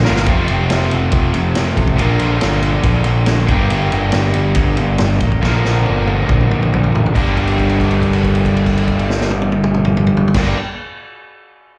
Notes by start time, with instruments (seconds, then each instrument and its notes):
0.05 overdriven electric guitar A#2 D3 F3 A#3 D4 A#4, snare
0.09 picked electric bass G1
0.16 snare
0.26 picked electric bass F1, overdriven electric guitar F2 C3 F3 A3 C4 F4, kick, ride
0.48 picked electric bass F1, ride
0.70 picked electric bass F1, snare, ride
0.91 picked electric bass F1, ride
1.12 picked electric bass F1, kick, ride
1.34 picked electric bass F1, ride
1.55 picked electric bass F1, snare, ride
1.77 picked electric bass A1, kick, ride
1.88 kick
1.96 picked electric bass A#1, overdriven electric guitar A#2 D3 A#3 D4, kick, ride
2.00 overdriven electric guitar F4
2.19 picked electric bass A#1, ride
2.41 picked electric bass G1, snare, ride
2.62 ride
2.83 picked electric bass A#1, kick, ride
3.04 picked electric bass A#1, ride
3.26 picked electric bass A#1, snare, ride
3.46 picked electric bass G1, overdriven electric guitar G2 D3 G3 A#3 D4 G4, kick, ride
3.70 picked electric bass G1, ride
3.92 picked electric bass G1, ride
4.12 picked electric bass G1, snare, ride
4.34 picked electric bass G1, ride
4.55 picked electric bass G1, kick, ride
4.77 picked electric bass G1, ride
4.98 picked electric bass G1, snare, ride
5.20 picked electric bass A1, kick, ride
5.32 kick
5.41 picked electric bass A#1, overdriven electric guitar A#2 D3 F3 A#3 D4, kick, snare
5.46 overdriven electric guitar A#4
5.65 picked electric bass A#1, snare
5.86 picked electric bass G1, high tom
6.07 high tom
6.29 picked electric bass A#1, kick, mid tom
6.41 mid tom
6.51 picked electric bass A#1, mid tom
6.62 mid tom
6.74 picked electric bass A#1, mid tom
6.84 floor tom
6.95 picked electric bass A1, floor tom
7.06 floor tom
7.14 picked electric bass G1, overdriven electric guitar G2 D3 G3 A#3 D4, kick, crash
7.18 overdriven electric guitar G4
7.37 kick, crash
7.47 crash
7.58 kick, crash
7.69 crash
7.80 kick, crash
7.91 crash
8.02 kick, crash
8.13 crash
8.23 kick, crash
8.35 crash
8.45 kick, crash
8.56 crash
8.66 kick, crash
8.77 crash
8.88 kick, crash
8.99 crash
9.10 snare
9.21 snare
9.31 high tom
9.42 high tom
9.52 high tom
9.64 mid tom
9.74 mid tom
9.85 mid tom
9.97 mid tom
10.07 mid tom
10.17 floor tom
10.28 floor tom
10.34 picked electric bass G1, overdriven electric guitar G2 D3 G3 A#3 D4 G4, kick, snare, crash